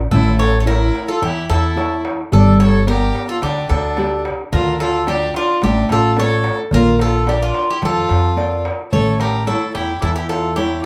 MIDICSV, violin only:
0, 0, Header, 1, 2, 480
1, 0, Start_track
1, 0, Tempo, 549954
1, 108, Time_signature, 4, 2, 24, 8
1, 9474, End_track
2, 0, Start_track
2, 0, Title_t, "Violin"
2, 0, Program_c, 0, 40
2, 107, Note_on_c, 0, 64, 83
2, 330, Note_off_c, 0, 64, 0
2, 342, Note_on_c, 0, 69, 75
2, 511, Note_off_c, 0, 69, 0
2, 533, Note_on_c, 0, 69, 52
2, 585, Note_off_c, 0, 69, 0
2, 590, Note_on_c, 0, 64, 71
2, 924, Note_off_c, 0, 64, 0
2, 954, Note_on_c, 0, 65, 63
2, 1062, Note_off_c, 0, 65, 0
2, 1083, Note_on_c, 0, 64, 67
2, 1299, Note_off_c, 0, 64, 0
2, 1316, Note_on_c, 0, 64, 64
2, 1759, Note_off_c, 0, 64, 0
2, 2060, Note_on_c, 0, 62, 86
2, 2268, Note_off_c, 0, 62, 0
2, 2284, Note_on_c, 0, 69, 82
2, 2499, Note_off_c, 0, 69, 0
2, 2524, Note_on_c, 0, 67, 78
2, 2851, Note_off_c, 0, 67, 0
2, 2878, Note_on_c, 0, 65, 69
2, 2984, Note_off_c, 0, 65, 0
2, 2996, Note_on_c, 0, 62, 66
2, 3215, Note_off_c, 0, 62, 0
2, 3225, Note_on_c, 0, 62, 68
2, 3672, Note_off_c, 0, 62, 0
2, 3956, Note_on_c, 0, 65, 80
2, 4175, Note_off_c, 0, 65, 0
2, 4192, Note_on_c, 0, 65, 77
2, 4413, Note_off_c, 0, 65, 0
2, 4443, Note_on_c, 0, 62, 81
2, 4659, Note_off_c, 0, 62, 0
2, 4678, Note_on_c, 0, 62, 69
2, 4896, Note_off_c, 0, 62, 0
2, 4917, Note_on_c, 0, 62, 83
2, 5136, Note_off_c, 0, 62, 0
2, 5163, Note_on_c, 0, 65, 76
2, 5378, Note_off_c, 0, 65, 0
2, 5408, Note_on_c, 0, 69, 79
2, 5733, Note_off_c, 0, 69, 0
2, 5887, Note_on_c, 0, 65, 89
2, 6100, Note_off_c, 0, 65, 0
2, 6124, Note_on_c, 0, 65, 71
2, 6339, Note_off_c, 0, 65, 0
2, 6362, Note_on_c, 0, 62, 75
2, 6466, Note_off_c, 0, 62, 0
2, 6486, Note_on_c, 0, 62, 63
2, 6700, Note_off_c, 0, 62, 0
2, 6732, Note_on_c, 0, 64, 68
2, 6831, Note_off_c, 0, 64, 0
2, 6848, Note_on_c, 0, 65, 76
2, 7522, Note_off_c, 0, 65, 0
2, 7784, Note_on_c, 0, 69, 75
2, 8008, Note_off_c, 0, 69, 0
2, 8038, Note_on_c, 0, 67, 61
2, 8255, Note_off_c, 0, 67, 0
2, 8266, Note_on_c, 0, 64, 68
2, 8489, Note_off_c, 0, 64, 0
2, 8503, Note_on_c, 0, 64, 72
2, 8727, Note_off_c, 0, 64, 0
2, 8737, Note_on_c, 0, 64, 70
2, 8852, Note_off_c, 0, 64, 0
2, 8861, Note_on_c, 0, 64, 62
2, 8972, Note_off_c, 0, 64, 0
2, 8977, Note_on_c, 0, 65, 60
2, 9204, Note_off_c, 0, 65, 0
2, 9215, Note_on_c, 0, 64, 66
2, 9438, Note_off_c, 0, 64, 0
2, 9444, Note_on_c, 0, 65, 64
2, 9474, Note_off_c, 0, 65, 0
2, 9474, End_track
0, 0, End_of_file